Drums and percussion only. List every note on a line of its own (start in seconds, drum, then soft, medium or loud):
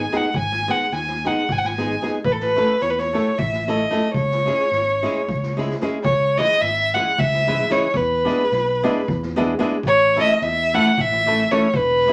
0.12 snare soft
0.34 kick medium
0.51 snare soft
0.67 snare soft
0.91 snare soft
1.07 snare soft
1.23 snare soft
1.49 kick medium
1.64 snare soft
1.78 snare soft
2.02 snare soft
2.24 kick medium
2.40 snare soft
2.57 snare soft
2.80 snare soft
2.98 snare soft
3.15 snare soft
3.39 kick medium
3.52 snare soft
3.68 snare soft
3.91 snare soft
4.14 kick medium
4.31 snare soft
4.47 snare soft
4.59 snare soft
4.72 snare soft
5.04 snare soft
5.29 kick medium
5.43 snare soft
5.58 snare soft
5.71 snare soft
5.80 snare soft
6.05 kick medium
6.37 snare soft
6.61 snare soft
6.93 snare soft
7.18 kick medium
7.33 snare soft
7.47 snare soft
7.69 snare soft
7.94 kick medium
8.27 snare soft
8.51 snare soft
8.84 snare soft
9.08 kick medium
9.22 snare soft
9.37 snare soft
9.60 snare soft
9.83 kick medium
10.15 snare soft
10.40 snare soft
10.73 snare soft
10.98 kick medium
11.11 snare soft
11.25 snare soft
11.50 snare soft
11.74 kick medium
12.05 snare soft